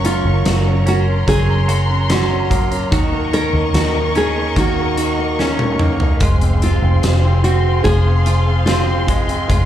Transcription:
0.00 0.21 F#1 medium
0.00 2.92 F#2 medium
0.00 0.04 F#3 medium
0.00 0.25 C#4 medium
0.00 1.68 F#4 medium
0.00 2.89 A#4 medium
0.00 6.17 A#5 medium
0.00 0.85 C#6 medium
0.04 0.44 F#3 medium
0.04 0.86 C#4 medium
0.04 0.83 F4 medium
0.04 closed hi-hat medium
0.25 0.44 F#1 medium
0.25 0.65 C#4 soft
0.46 1.24 F#1 medium
0.46 0.85 F#3 medium
0.46 snare loud
0.46 closed hi-hat medium
0.66 1.06 C#4 medium
0.86 1.26 F#3 medium
0.86 2.09 C#4 medium
0.86 0.99 F#4 medium
0.86 2.90 C6 medium
0.86 closed hi-hat medium
1.08 1.47 C#4 soft
1.27 2.94 F#1 loud
1.27 2.91 F#3 medium
1.27 1.67 F#3 medium
1.27 2.06 G#4 loud
1.27 kick medium
1.27 closed hi-hat medium
1.49 1.88 C#4 medium
1.68 2.09 F#3 medium
1.68 2.92 F#4 medium
1.68 closed hi-hat medium
1.90 2.29 C#4 medium
2.10 2.49 F#3 medium
2.10 3.33 C#4 medium
2.10 2.69 F#4 medium
2.10 snare medium
2.10 closed hi-hat medium
2.30 2.70 C#4 medium
2.50 2.91 F#3 medium
2.50 4.56 A#3 medium
2.50 kick medium
2.50 closed hi-hat medium
2.72 2.92 C#4 soft
2.72 closed hi-hat soft
2.91 3.50 D#2 medium
2.91 3.31 D#3 medium
2.91 6.21 D#3 medium
2.91 3.73 F#4 medium
2.91 6.17 A#4 medium
2.91 6.17 D#5 medium
2.91 6.17 C#6 medium
2.91 kick loud
2.91 closed hi-hat medium
3.12 3.52 A#3 medium
3.32 3.73 D#3 medium
3.32 4.14 C#4 medium
3.32 4.12 A#4 loud
3.32 closed hi-hat medium
3.53 3.73 D#2 loud
3.53 3.93 A#3 medium
3.74 4.52 D#2 medium
3.74 4.14 D#3 soft
3.74 4.96 F#4 medium
3.74 snare loud
3.74 closed hi-hat medium
3.95 4.35 A#3 medium
4.15 4.55 D#3 medium
4.15 5.38 C#4 medium
4.15 4.58 G#4 loud
4.15 closed hi-hat medium
4.37 4.77 A#3 soft
4.56 6.17 D#2 loud
4.56 4.96 D#3 medium
4.56 5.79 A#3 medium
4.56 5.42 F#4 medium
4.56 kick medium
4.56 closed hi-hat medium
4.78 5.17 A#3 soft
4.97 5.37 D#3 soft
4.97 6.21 F#4 medium
4.97 closed hi-hat medium
5.19 5.58 A#3 medium
5.39 5.78 D#3 medium
5.39 6.29 C#4 medium
5.39 5.97 C#4 medium
5.39 snare medium
5.59 6.00 A#3 medium
5.59 high tom medium
5.79 6.20 D#3 medium
5.79 6.29 A#3 medium
5.79 mid tom medium
6.00 6.21 A#3 soft
6.00 floor tom medium
6.20 6.79 F1 medium
6.20 9.48 F2 medium
6.20 9.46 G#3 medium
6.20 8.26 F4 medium
6.20 9.65 G#4 medium
6.20 9.47 C5 medium
6.20 9.65 F5 medium
6.20 9.65 C6 medium
6.20 kick medium
6.20 closed hi-hat medium
6.41 6.81 C4 soft
6.41 closed hi-hat soft
6.62 8.22 C3 medium
6.62 7.44 C4 medium
6.62 7.44 F4 medium
6.62 closed hi-hat medium
6.82 7.01 F1 loud
6.82 7.23 C4 soft
7.03 7.81 F1 medium
7.03 snare loud
7.03 closed hi-hat medium
7.24 7.63 C4 medium
7.44 8.67 C4 medium
7.44 7.84 F#4 medium
7.44 closed hi-hat medium
7.64 8.05 C4 soft
7.84 9.46 F1 loud
7.84 8.25 F3 medium
7.84 9.65 F3 medium
7.84 8.65 G#4 loud
7.84 kick medium
7.84 closed hi-hat medium
8.07 8.45 C4 soft
8.26 8.65 F3 soft
8.26 9.50 F4 medium
8.26 closed hi-hat medium
8.46 8.86 C4 medium
8.66 9.06 F3 medium
8.66 9.65 C4 medium
8.66 9.24 F4 medium
8.66 snare loud
8.66 closed hi-hat medium
8.87 9.27 C4 medium
9.07 9.48 F3 medium
9.07 9.65 G#3 medium
9.07 kick medium
9.07 closed hi-hat medium
9.28 9.49 C4 medium
9.28 closed hi-hat medium
9.48 9.65 F1 medium
9.48 9.65 F2 medium
9.48 9.65 G#3 medium
9.48 9.65 F4 medium
9.48 kick medium
9.48 closed hi-hat medium

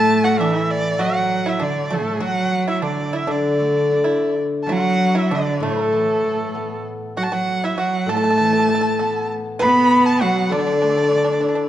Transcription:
0.00 1.60 A2 medium
0.00 0.39 F#3 medium
0.00 0.41 A3 loud
0.00 0.23 A4 loud
0.00 0.25 A5 loud
0.24 0.39 F#4 medium
0.24 0.41 F#5 loud
0.39 0.99 E3 medium
0.39 0.58 D4 medium
0.39 0.72 E5 medium
0.58 0.97 E4 medium
0.70 1.02 D5 loud
0.98 2.19 F#3 medium
0.98 1.63 F#3 medium
0.98 1.42 F#4 medium
0.98 1.50 F#5 loud
1.46 1.60 E4 medium
1.46 1.64 E5 medium
1.60 1.92 D3 medium
1.60 1.89 D4 medium
1.60 1.94 D5 medium
1.90 2.21 A2 medium
1.90 2.20 A3 medium
1.90 2.23 A4 medium
2.20 2.83 F#3 loud
2.20 4.06 F#3 medium
2.20 2.64 F#4 medium
2.24 2.66 F#5 loud
2.68 2.82 E4 medium
2.68 2.83 E5 medium
2.82 3.27 D3 medium
2.82 3.11 D4 medium
2.82 3.17 D5 medium
3.13 3.28 E4 medium
3.13 3.33 E5 medium
3.27 5.14 D3 medium
3.27 4.33 D3 medium
3.27 4.02 D4 medium
3.31 4.39 D5 medium
3.59 4.84 A3 soft
3.91 5.15 D4 soft
4.04 4.34 E4 medium
4.63 6.53 F#3 medium
4.63 5.33 F#3 loud
4.63 4.73 A5 medium
4.69 5.12 F#4 medium
4.69 5.20 F#5 loud
5.15 5.30 E4 medium
5.15 5.36 E5 medium
5.31 5.65 D3 medium
5.31 5.60 D4 medium
5.31 5.64 D5 medium
5.60 7.46 A2 medium
5.60 6.86 A2 medium
5.60 6.82 A3 medium
5.65 6.83 A4 medium
5.93 7.16 E3 medium
6.24 7.47 A3 soft
6.54 7.77 B3 soft
7.17 7.29 F#3 medium
7.17 7.30 F#4 medium
7.17 7.24 F#5 loud
7.23 7.34 A5 medium
7.32 7.75 F#3 medium
7.32 7.61 F#4 medium
7.32 7.66 F#5 loud
7.64 7.77 E4 medium
7.64 7.81 E5 medium
7.78 8.11 F#3 medium
7.78 8.06 F#4 medium
7.78 8.10 F#5 medium
8.06 9.59 A2 medium
8.06 9.31 A3 medium
8.06 8.15 A4 medium
8.06 9.30 A5 loud
8.17 8.23 A4 medium
8.24 8.29 A4 medium
8.30 8.37 A4 medium
8.38 9.61 E3 medium
8.38 8.44 A4 medium
8.45 8.51 A4 medium
8.53 8.58 A4 medium
8.59 8.66 A4 medium
8.69 9.91 A3 medium
8.69 8.74 A4 medium
8.75 8.80 A4 medium
8.81 8.88 A4 medium
8.99 10.22 B3 medium
8.99 9.28 A4 medium
9.59 10.51 B2 medium
9.59 10.24 B3 loud
9.59 10.16 B4 loud
9.59 10.07 B5 loud
10.06 10.23 A5 loud
10.21 10.54 F#3 medium
10.21 10.49 F#4 medium
10.21 10.53 F#5 loud
10.49 11.69 D3 medium
10.49 10.57 D4 medium
10.49 11.69 D5 loud
10.59 10.65 D4 medium
10.67 10.71 D4 medium
10.72 10.79 D4 medium
10.82 11.69 A3 medium
10.82 10.88 D4 medium
10.90 10.96 D4 soft
10.97 11.02 D4 medium
11.04 11.09 D4 soft
11.11 11.16 D4 soft
11.11 11.69 D4 medium
11.18 11.23 D4 soft
11.24 11.32 D4 medium
11.33 11.40 D4 soft
11.41 11.47 D4 medium
11.41 11.69 E4 medium
11.48 11.54 D4 soft
11.55 11.62 D4 medium

